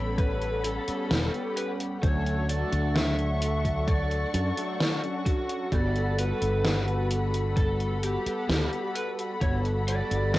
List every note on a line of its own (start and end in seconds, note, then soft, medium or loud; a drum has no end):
0.00 0.77 A1 medium
0.00 0.59 G3 loud
0.00 0.60 B3 medium
0.00 0.60 C#4 medium
0.00 0.61 A4 loud
0.00 1.99 A4 medium
0.00 1.99 C#5 medium
0.00 0.16 G5 medium
0.00 1.99 B5 medium
0.18 0.64 B4 medium
0.18 10.39 F#5 medium
0.18 kick loud
0.18 closed hi-hat medium
0.42 closed hi-hat soft
0.64 0.82 G3 medium
0.64 0.82 B3 medium
0.64 0.82 C#4 medium
0.64 1.53 A4 loud
0.64 0.83 A4 medium
0.64 closed hi-hat medium
0.87 1.28 G3 loud
0.87 1.28 B3 medium
0.87 1.28 C#4 medium
0.87 1.29 A4 loud
0.87 muted fretless electric bass stroke soft
0.87 closed hi-hat medium
1.11 1.27 E1 medium
1.11 snare loud
1.11 closed hi-hat medium
1.33 1.97 G3 medium
1.33 1.97 B3 medium
1.33 1.98 C#4 medium
1.33 1.98 G4 medium
1.33 closed hi-hat soft
1.57 1.69 B4 loud
1.57 closed hi-hat medium
1.80 closed hi-hat medium
2.02 2.62 D2 loud
2.02 2.43 F#3 loud
2.02 2.44 C#4 medium
2.02 2.44 D4 medium
2.02 10.39 A4 medium
2.02 2.44 A4 loud
2.02 2.49 C#5 loud
2.02 5.68 C#6 medium
2.02 kick loud
2.02 closed hi-hat medium
2.26 closed hi-hat soft
2.48 4.28 F#3 medium
2.48 4.29 A3 medium
2.48 4.29 D4 medium
2.48 4.30 A4 loud
2.48 2.95 D5 loud
2.48 closed hi-hat medium
2.72 4.23 D2 medium
2.72 closed hi-hat medium
2.96 3.91 E5 loud
2.96 snare loud
2.96 closed hi-hat medium
3.19 closed hi-hat soft
3.42 closed hi-hat loud
3.65 kick medium
3.65 closed hi-hat medium
3.88 5.30 D5 loud
3.88 kick loud
3.88 closed hi-hat medium
4.11 closed hi-hat soft
4.33 4.50 F#2 medium
4.33 4.51 F#3 medium
4.33 4.51 C#4 medium
4.33 4.51 D4 medium
4.33 4.52 A4 medium
4.33 closed hi-hat medium
4.56 4.97 F#3 loud
4.56 4.97 A3 medium
4.56 4.98 D4 medium
4.56 4.98 A4 loud
4.56 closed hi-hat medium
4.80 snare loud
4.80 closed hi-hat medium
5.03 5.66 F#3 medium
5.03 5.67 C#4 medium
5.03 5.67 D4 medium
5.03 5.67 F#4 medium
5.03 closed hi-hat soft
5.26 5.74 F#4 medium
5.26 kick loud
5.26 closed hi-hat medium
5.50 closed hi-hat medium
5.72 6.31 G1 loud
5.72 6.13 G3 loud
5.72 6.13 B3 medium
5.72 6.13 F#4 medium
5.72 6.13 A4 loud
5.72 6.15 D5 loud
5.72 10.39 B5 loud
5.72 kick loud
5.72 closed hi-hat medium
5.96 closed hi-hat soft
6.17 7.98 G3 loud
6.17 7.98 B3 medium
6.17 7.99 F#4 medium
6.17 7.99 A4 loud
6.17 7.07 B4 medium
6.17 closed hi-hat medium
6.41 8.16 G1 medium
6.41 closed hi-hat medium
6.65 snare loud
6.65 closed hi-hat medium
6.88 closed hi-hat soft
7.11 closed hi-hat loud
7.34 closed hi-hat medium
7.57 8.04 A4 medium
7.57 kick loud
7.57 closed hi-hat medium
7.80 closed hi-hat soft
8.02 8.20 G3 medium
8.02 8.21 B3 medium
8.02 8.21 F#4 medium
8.02 8.92 G4 loud
8.02 8.21 A4 medium
8.02 closed hi-hat loud
8.25 8.66 G3 medium
8.25 8.67 B3 medium
8.25 8.67 A4 loud
8.25 8.67 F#5 medium
8.25 muted fretless electric bass stroke soft
8.25 closed hi-hat medium
8.49 8.66 D2 medium
8.49 snare loud
8.49 closed hi-hat medium
8.72 9.36 G3 medium
8.72 9.36 B3 medium
8.72 9.36 F#4 medium
8.72 9.36 A4 medium
8.72 closed hi-hat soft
8.95 9.08 B4 loud
8.95 closed hi-hat medium
9.19 closed hi-hat medium
9.41 10.00 G1 loud
9.41 9.82 G3 medium
9.41 9.82 B3 medium
9.41 9.82 F#4 medium
9.41 9.82 A4 loud
9.41 9.54 C#5 loud
9.41 kick loud
9.41 closed hi-hat medium
9.65 closed hi-hat soft
9.86 10.39 G3 medium
9.86 10.39 B3 medium
9.86 10.39 F#4 medium
9.86 10.39 A4 loud
9.86 10.33 D5 loud
9.86 closed hi-hat medium
10.11 10.39 G1 loud
10.11 closed hi-hat medium
10.34 10.39 E5 loud
10.34 snare loud
10.34 closed hi-hat medium